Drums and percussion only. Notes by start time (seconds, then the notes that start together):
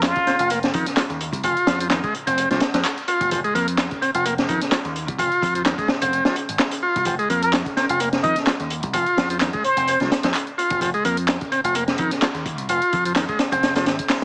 0.03 snare, clap, closed hi-hat
0.16 kick, closed hi-hat
0.27 snare, closed hi-hat
0.39 closed hi-hat
0.50 closed hi-hat
0.63 snare, closed hi-hat
0.74 kick, closed hi-hat
0.86 snare, closed hi-hat
0.97 snare, clap, closed hi-hat
1.10 closed hi-hat
1.21 closed hi-hat
1.33 kick, closed hi-hat
1.44 kick, closed hi-hat
1.57 closed hi-hat
1.67 snare, closed hi-hat
1.80 closed hi-hat
1.90 snare, clap, closed hi-hat
2.04 kick, closed hi-hat
2.14 closed hi-hat
2.27 closed hi-hat
2.38 closed hi-hat
2.51 snare, closed hi-hat
2.60 snare, closed hi-hat
2.74 snare, closed hi-hat
2.85 clap, closed hi-hat
2.98 closed hi-hat
3.08 closed hi-hat
3.21 kick, closed hi-hat
3.31 kick, closed hi-hat
3.44 closed hi-hat
3.55 closed hi-hat
3.68 closed hi-hat
3.78 snare, clap, closed hi-hat
3.91 kick, closed hi-hat
4.02 closed hi-hat
4.15 closed hi-hat
4.25 closed hi-hat
4.38 snare, closed hi-hat
4.49 kick, closed hi-hat
4.61 snare, closed hi-hat
4.72 snare, clap, closed hi-hat
4.85 closed hi-hat
4.96 closed hi-hat
5.08 kick, closed hi-hat
5.19 kick, closed hi-hat
5.32 closed hi-hat
5.42 kick, closed hi-hat
5.55 closed hi-hat
5.65 snare, clap, closed hi-hat
5.78 kick, closed hi-hat
5.88 snare
6.02 closed hi-hat
6.13 closed hi-hat
6.25 snare, closed hi-hat
6.36 closed hi-hat
6.49 closed hi-hat
6.59 snare, clap, closed hi-hat
6.71 closed hi-hat
6.96 kick, closed hi-hat
7.05 kick, closed hi-hat
7.19 closed hi-hat
7.30 closed hi-hat
7.43 closed hi-hat
7.53 snare, clap, closed hi-hat
7.66 kick, closed hi-hat
7.77 snare, closed hi-hat
7.89 closed hi-hat
8.00 closed hi-hat
8.13 snare, closed hi-hat
8.24 kick, closed hi-hat
8.36 snare, closed hi-hat
8.47 snare, clap, closed hi-hat
8.60 closed hi-hat
8.70 closed hi-hat
8.83 kick, closed hi-hat
8.94 kick, closed hi-hat
9.06 closed hi-hat
9.18 snare, closed hi-hat
9.30 closed hi-hat
9.40 snare, clap, closed hi-hat
9.53 kick, closed hi-hat
9.64 closed hi-hat
9.77 closed hi-hat
9.88 closed hi-hat
10.00 snare, closed hi-hat
10.12 snare, closed hi-hat
10.23 snare, closed hi-hat
10.34 clap, closed hi-hat
10.47 closed hi-hat
10.59 closed hi-hat
10.70 kick, closed hi-hat
10.81 kick, closed hi-hat
10.94 closed hi-hat
11.05 closed hi-hat
11.17 closed hi-hat
11.28 snare, clap, closed hi-hat
11.41 kick, closed hi-hat
11.52 closed hi-hat
11.65 closed hi-hat
11.75 closed hi-hat
11.88 snare, closed hi-hat
11.98 kick, closed hi-hat
12.11 snare, closed hi-hat
12.22 snare, clap, closed hi-hat
12.35 closed hi-hat
12.46 kick, closed hi-hat
12.58 closed hi-hat
12.69 closed hi-hat
12.82 closed hi-hat
12.93 kick, closed hi-hat
13.05 closed hi-hat
13.16 snare, clap, closed hi-hat
13.29 kick, closed hi-hat
13.39 snare, closed hi-hat
13.52 kick, closed hi-hat
13.63 snare, closed hi-hat
13.76 snare, closed hi-hat
13.86 snare, closed hi-hat
13.99 kick, closed hi-hat
14.10 snare, clap, closed hi-hat